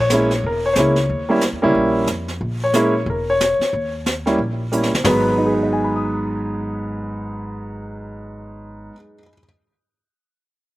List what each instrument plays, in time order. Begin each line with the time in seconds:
Already playing: upright bass A#1
0.00 grand piano C#5
0.10 grand piano G#3 A#3 C#4 E4, snare, hi-hat pedal
0.31 snare
0.43 upright bass E1, grand piano A#4, brush sweep
0.66 grand piano C#5
0.73 upright bass C#2, grand piano G#3 A#3 C5, snare, hi-hat pedal
0.78 grand piano C#4 E4 C#5
0.96 snare
1.08 upright bass D#2, brush sweep
1.29 grand piano G3 A#3 C#4 E4
1.41 snare, hi-hat pedal
1.53 upright bass E2
1.62 upright bass C#2, grand piano G3 A#3 C#4 E4
1.74 upright bass A#1, brush sweep
2.07 upright bass F2, snare, hi-hat pedal
2.28 snare
2.40 upright bass A#1, brush sweep
2.64 grand piano C#5
2.73 grand piano G#3 A#3 C#4 E4, snare, hi-hat pedal
3.06 upright bass E1, grand piano A#4, brush sweep
3.30 grand piano C#5
3.40 grand piano C#5, snare, hi-hat pedal
3.59 muted upright bass stroke, snare
3.73 upright bass D#2, brush sweep
4.06 snare, hi-hat pedal
4.26 grand piano G3 A#3 C#4 E4, snare
4.38 upright bass A#1, brush sweep
4.72 grand piano G3 A#3 C#4 E4, hi-hat pedal
4.83 snare
4.93 upright bass G1, snare
5.04 upright bass G#1, grand piano G#2 F#3 G#3 B3 B4, snare, floor tom, open hi-hat
5.38 grand piano D#4
5.46 grand piano G#4
5.54 grand piano B4
5.63 grand piano D#5
5.73 grand piano G#5
5.84 grand piano B5
5.96 grand piano D#6